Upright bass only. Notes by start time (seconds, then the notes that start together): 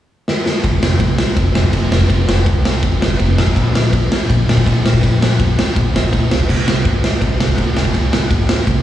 0.64 F1
0.81 F1
1.00 C2
1.36 F1
1.54 F1
1.73 F1
1.90 F1
2.10 F1
2.28 F1
2.46 C2
2.82 F1
3.01 F1
3.19 F1
3.36 A#1
3.56 A#1
3.72 A#1
3.92 F2
4.30 A#1
4.47 A#1
4.66 A#1
4.83 A#1
5.03 A#1
5.21 A#1
5.39 F2
5.76 A#1
5.93 A#1
6.12 D2
6.30 C2
6.49 C2
6.66 C2
6.85 G2
7.21 C2
7.38 C2
7.58 C2
7.75 C2
7.94 C2
8.12 C2
8.31 G2
8.67 C2